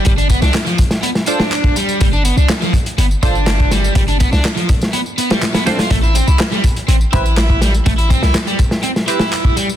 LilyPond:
<<
  \new Staff \with { instrumentName = "Synth stab" } { \time 4/4 \key g \mixolydian \tempo 4 = 123 r2 r8 <d' f' a' c''>16 r4 r16 | r2 r8 <d' f' a' c''>16 r4 r16 | r2. r8 <d' f' a' c''>16 r16 | r2 r8 <c' e' g' b'>16 r4 r16 |
r2 r8 <c' e' g' b'>16 r4 r16 | }
  \new Staff \with { instrumentName = "Overdriven electric guitar" } { \time 4/4 \key g \mixolydian g16 d'16 b16 d'16 r16 f16 r8 b16 r16 d'4 g8 | g16 d'16 b16 d'16 r16 f16 r8 b16 r16 d'4 g8 | g16 d'16 b16 d'16 r16 f16 r8 b16 r16 b16 g16 r16 b16 c'16 f'16 | a16 e'16 c'16 e'16 r16 g16 r8 c'16 r16 e'4 g16 r16 |
a16 e'16 c'16 e'16 r16 g16 r8 c'16 r16 e'4 g16 r16 | }
  \new Staff \with { instrumentName = "808-style bass" } { \clef bass \time 4/4 \key g \mixolydian g,,8 r16 c,16 r2. | g,,8 r16 c,16 r4 g,,16 r16 g,,4~ g,,16 r16 | g,,8 r16 c,16 r2. | a,,8 r16 c,16 r4 a,,16 r16 a,,4~ a,,16 r16 |
a,,8 r16 c,16 r2. | }
  \new DrumStaff \with { instrumentName = "Drums" } \drummode { \time 4/4 <hh bd tamb>16 <hh tamb>16 <hh bd tamb>16 <sn tamb>16 <hc hh sn tamb>16 <hh tamb>16 <hh bd tamb>16 <sn tamb>16 <hh tamb>16 <sn tamb>16 <hh tamb>16 <sn tamb>16 <hc hh tamb>16 <bd tamb>16 <hh tamb>16 tamb16 | <hh bd tamb>16 tamb16 <hh tamb>16 tamb16 <hc hh sn tamb>16 <sn tamb>16 <hh bd tamb>16 <hh tamb>16 <hh tamb>16 tamb16 <hh bd tamb>16 tamb16 <hc hh sn tamb>16 <bd tamb>16 <hh sn tamb>16 tamb16 | <hh bd tamb>16 <hh tamb>16 <hh bd tamb>16 <sn tamb>16 <hc hh sn tamb>16 <hh tamb>16 <hh bd tamb>16 <sn tamb>16 <hh tamb>16 tamb16 <hh tamb>16 <sn tamb>16 <hc hh sn tamb>16 <hh sn tamb>16 <hh sn tamb>16 <hh sn tamb>16 | <hh bd tamb>16 tamb16 <hh tamb>16 tamb16 <hc hh sn tamb>16 <sn tamb>16 <hh bd tamb>16 <hh tamb>16 <hh tamb>16 tamb16 <hh bd tamb>16 tamb16 <hc hh sn tamb>16 <bd tamb>16 <hh sn tamb>16 tamb16 |
<hh bd tamb>16 <hh tamb>16 <hh bd tamb>16 <sn tamb>16 <hc hh sn tamb>16 <hh tamb>16 <hh bd tamb>16 <sn tamb>16 <hh tamb>16 <sn tamb>16 <hh tamb>16 <sn tamb>16 <hc hh tamb>16 <bd tamb>16 <hh tamb>16 tamb16 | }
>>